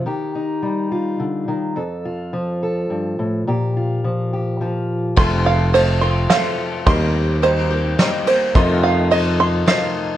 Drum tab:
RD |------|------|------|x-x-x-|
SD |------|------|------|----o-|
BD |------|------|------|o-----|

RD |x-x-xx|x-x-x-|
SD |----o-|----o-|
BD |o-----|o-----|